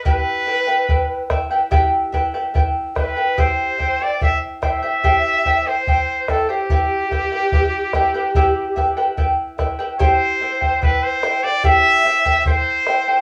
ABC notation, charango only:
X:1
M:4/4
L:1/16
Q:1/4=72
K:Clyd
V:1 name="Charango"
[EGBeg]2 [EBeg] [EBg] [EBeg]2 [EBeg] [EBg] [EGBeg]2 [EBeg] [EBg] [EBeg]2 [EBeg] [EBg] | [EGceg]2 [Eceg] [Ecg] [Eceg]2 [Eceg] [Ecg] [EGceg]2 [Eceg] [Ecg] [Eceg]2 [Eceg] [Ecg] | [EGBeg]2 [EBeg] [EBg] [EBeg]2 [EBeg] [EBg] [EGBeg]2 [EBeg] [EBg] [EBeg]2 [EBeg] [EBg] | [EGceg]2 [Eceg] [Ecg] [Eceg]2 [Eceg] [Ecg] [EGceg]2 [Eceg] [Ecg] [Eceg]2 [Eceg] [Ecg] |]